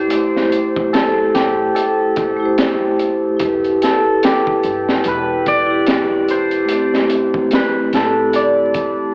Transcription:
Already playing: vibraphone E4 G4, hammered dulcimer G4 A4 C5 D5
0.07 vibraphone A3 E4, closed hi-hat
0.13 vibraphone G4 C5
0.36 snare
0.52 closed hi-hat
0.76 kick
0.93 hammered dulcimer A4, snare, closed hi-hat
1.35 upright bass A1, hammered dulcimer G4, snare, closed hi-hat
1.75 hammered dulcimer A4, closed hi-hat
2.16 kick, closed hi-hat
2.37 vibraphone A3 E4
2.43 vibraphone G4 C5
2.58 snare, closed hi-hat
2.99 closed hi-hat
3.37 vibraphone E4 G4, kick, closed hi-hat
3.41 upright bass E1
3.45 vibraphone B4
3.64 closed hi-hat
3.82 hammered dulcimer A4, snare, closed hi-hat
4.23 hammered dulcimer G4, snare, closed hi-hat
4.47 kick
4.63 upright bass G1, closed hi-hat
4.88 snare
5.04 upright bass E1, hammered dulcimer B4, closed hi-hat
5.46 hammered dulcimer D5, kick, closed hi-hat
5.66 vibraphone E4
5.70 vibraphone G4
5.86 snare, closed hi-hat
6.28 hammered dulcimer C5, closed hi-hat
6.51 closed hi-hat
6.65 vibraphone A3 E4, closed hi-hat
6.71 vibraphone C4 G4
6.94 snare
7.10 closed hi-hat
7.34 kick
7.51 hammered dulcimer B4, snare, closed hi-hat
7.93 upright bass A1, hammered dulcimer A4, snare, closed hi-hat
8.33 hammered dulcimer D5, closed hi-hat
8.74 upright bass E1, kick, closed hi-hat

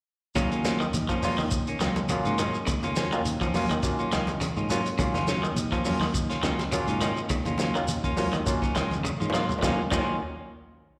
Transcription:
0.35 fingered electric bass D#2, clean electric guitar C#3 F#3 A#3 C#4 F4, tine electric piano F#3 A#3 C#4 F4, kick, closed hi-hat, shekere
0.51 clean electric guitar A#3 C#4 F4, closed hi-hat, shekere
0.64 clean electric guitar F#3 A#3 C#4 F4, snare, closed hi-hat, high conga, shekere
0.80 clean electric guitar D#3, shekere
0.94 fingered electric bass D#2, closed hi-hat, high conga, shekere
1.09 clean electric guitar F3 A#3 C#4 F4, kick, closed hi-hat, shekere
1.22 tine electric piano F#3 A#3 C#4 F4, clean electric guitar F#3 A#3 C#4 F4, open hi-hat, high conga, low conga, shekere
1.38 fingered electric bass D#2, clean electric guitar D#3, shekere
1.51 kick, closed hi-hat, shekere
1.67 clean electric guitar A#3 C#4, muted clean electric guitar stroke, closed hi-hat, shekere
1.80 fingered electric bass C#2, clean electric guitar D#3 F#3 A#3 C#4 F4, tine electric piano F#3 A#3 C#4 F4, snare, closed hi-hat, shekere
1.96 closed hi-hat, high conga, shekere
2.09 clean electric guitar C#3, tine electric piano F#3 A#3 C#4 F4, closed hi-hat, high conga, shekere
2.25 fingered electric bass G#2, clean electric guitar A#3 C#4 F4, closed hi-hat, high conga, shekere
2.38 clean electric guitar D#3 F#3 A#3 C#4 F4, closed hi-hat, low conga, shekere
2.54 shekere
2.67 fingered electric bass D#2, clean electric guitar C#3, kick, closed hi-hat, shekere
2.83 clean electric guitar A#3 C#4 F4, closed hi-hat, low conga, shekere
2.96 clean electric guitar F#3 A#3 C#4 F4, snare, closed hi-hat, high conga, shekere
3.12 clean electric guitar D#3, tine electric piano F#3 A#3 C#4 F4, shekere
3.25 fingered electric bass D#2, closed hi-hat, shekere
3.41 clean electric guitar F3 A#3 C#4, tine electric piano C#4 F4, muted clean electric guitar stroke, kick, closed hi-hat, high conga, shekere
3.54 tine electric piano F#3 A#3 C#4 F4, clean electric guitar F#3 A#3 C#4 F4, open hi-hat, high conga, low conga, shekere
3.69 fingered electric bass D#2, clean electric guitar D#3, closed hi-hat, shekere
3.83 tine electric piano F#3 A#3 C#4 F4, kick, snare, closed hi-hat, shekere
3.99 clean electric guitar A#3 C#4 F4, shekere
4.12 fingered electric bass C#2, clean electric guitar D#3 F#3 A#3 C#4 F4, snare, closed hi-hat, shekere
4.27 closed hi-hat, high conga, shekere
4.41 clean electric guitar C#3, closed hi-hat, high conga, shekere
4.57 fingered electric bass G#2, clean electric guitar A#3 C#4 F4, shekere
4.70 tine electric piano F#3 A#3 C#4 F4, clean electric guitar F#3 A#3 C#4 F4, closed hi-hat, low conga, shekere
4.86 closed hi-hat, shekere
4.99 fingered electric bass D#2, clean electric guitar C#3, tine electric piano F#3 A#3 C#4 F4, kick, closed hi-hat, shekere
5.14 clean electric guitar A#3 C#4 F4, snare, closed hi-hat, high conga, low conga, shekere
5.27 clean electric guitar F#3 A#3 C#4 F4, snare, closed hi-hat, high conga, shekere
5.43 clean electric guitar D#3, shekere
5.55 fingered electric bass D#2, closed hi-hat, high conga, shekere
5.72 clean electric guitar F3 A#3 C#4 F4, kick, closed hi-hat, shekere
5.85 clean electric guitar F#3 A#3 C#4 F4, tine electric piano F#3 A#3 C#4 F4, open hi-hat, high conga, low conga, shekere
6.00 fingered electric bass D#2, clean electric guitar D#3, snare, shekere
6.14 kick, closed hi-hat, shekere
6.30 clean electric guitar A#3 C#4 F4, snare, closed hi-hat, shekere
6.43 fingered electric bass C#2, clean electric guitar D#3 F#3 A#3 C#4 F4, tine electric piano F#3 A#3 C#4 F4, snare, closed hi-hat, shekere
6.59 snare, closed hi-hat, high conga, shekere
6.72 clean electric guitar C#3, tine electric piano F#3 A#3 C#4 F4, closed hi-hat, high conga, shekere
6.87 fingered electric bass G#2, clean electric guitar A#3 C#4 F4, closed hi-hat, shekere
7.01 clean electric guitar D#3 A#3 C#4 F4, muted clean electric guitar stroke, closed hi-hat, low conga, shekere
7.17 shekere
7.29 fingered electric bass D#2, clean electric guitar C#3, kick, closed hi-hat, shekere
7.45 clean electric guitar A#3 C#4 F4, closed hi-hat, high conga, low conga, shekere
7.58 clean electric guitar F#3 A#3 C#4 F4, snare, closed hi-hat, high conga, shekere
7.75 clean electric guitar D#3, tine electric piano F#3 A#3 C#4 F4, shekere
7.88 fingered electric bass D#2, closed hi-hat, high conga, shekere
8.04 clean electric guitar A#3 C#4 F4, tine electric piano C#4 F4, kick, closed hi-hat, shekere
8.17 tine electric piano F#3 A#3 C#4 F4, clean electric guitar F#3 A#3 C#4 F4, open hi-hat, high conga, low conga, shekere
8.33 fingered electric bass D#2, clean electric guitar D#3, closed hi-hat, shekere
8.45 tine electric piano F#3 A#3 C#4 F4, kick, snare, closed hi-hat, shekere
8.62 clean electric guitar C#4 F4, kick, snare, shekere
8.75 fingered electric bass C#2, clean electric guitar D#3 F#3 A#3 C#4 F4, snare, closed hi-hat, shekere
8.91 closed hi-hat, high conga, shekere
9.00 high conga
9.04 clean electric guitar C#3, high tom, shekere
9.10 high conga
9.20 fingered electric bass G#2, clean electric guitar A#3 C#4 F4, high conga, shekere
9.30 tine electric piano F#3 A#3, clean electric guitar F#3, low conga
9.34 clean electric guitar D#3 A#3 C#4 F4, tine electric piano C#4 F4, snare, shekere
9.49 floor tom, shekere
9.58 low conga
9.62 fingered electric bass D#2, clean electric guitar D#3 F#3 A#3 C#4 F4, tine electric piano F#3 A#3 C#4 F4, kick, snare, low conga, shekere
9.91 fingered electric bass D#2, clean electric guitar D#3 F#3 A#3 C#4 F4, tine electric piano F#3 A#3 C#4 F4, kick, crash, low conga, shekere

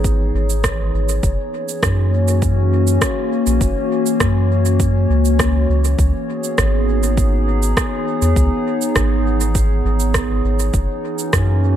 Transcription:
Already playing: sub bass G#1, ambient pad E3 B3 D#4 G#4 C#5
0.04 kick, cabasa
0.34 sub bass G#1
0.50 cabasa
0.64 kick, cross-stick, cabasa
0.94 sub bass G#1
1.09 cabasa
1.23 sub bass F#1, kick, cabasa
1.45 ambient pad A#3
1.52 ambient pad C#4
1.64 ambient pad F#4
1.68 cabasa
1.83 sub bass F#2, kick, cross-stick, cabasa
2.28 cabasa
2.42 kick, cabasa
2.87 cabasa
3.02 kick, cross-stick, cabasa
3.47 sub bass A#1, cabasa
3.61 sub bass F#1, kick, cabasa
4.06 cabasa
4.20 sub bass F#2, kick, cross-stick, cabasa
4.65 cabasa
4.80 kick, cabasa
5.10 sub bass C#2
5.25 cabasa
5.39 kick, cross-stick, cabasa
5.69 sub bass C#2
5.84 cabasa
5.99 sub bass C#2, kick, cabasa
6.09 ambient pad B3
6.19 ambient pad G#4
6.44 cabasa
6.52 ambient pad D#4
6.58 sub bass G#1, kick, cross-stick, cabasa
7.03 cabasa
7.17 kick, cabasa
7.63 cabasa
7.77 kick, cross-stick, cabasa
8.22 sub bass E2, cabasa
8.36 sub bass C#2, kick, cabasa
8.81 cabasa
8.96 sub bass G#1, kick, cross-stick, cabasa
9.40 cabasa
9.55 kick, cabasa
9.85 sub bass G#1
10.00 cabasa
10.14 kick, cross-stick, cabasa
10.44 sub bass G#1
10.59 cabasa
10.74 sub bass F#1, ambient pad E3, kick, cabasa
10.84 ambient pad C#4
11.05 ambient pad A#3 F#4
11.18 cabasa
11.33 sub bass F#2, kick, cross-stick, cabasa

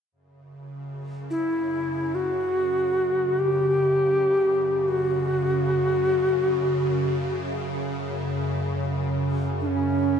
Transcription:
0.12 ambient pad F#2 C#3
1.30 native american-style wooden flute E4
2.15 native american-style wooden flute F#4
3.39 native american-style wooden flute G4
4.88 native american-style wooden flute F#4
9.60 native american-style wooden flute D4
9.67 native american-style wooden flute C#4

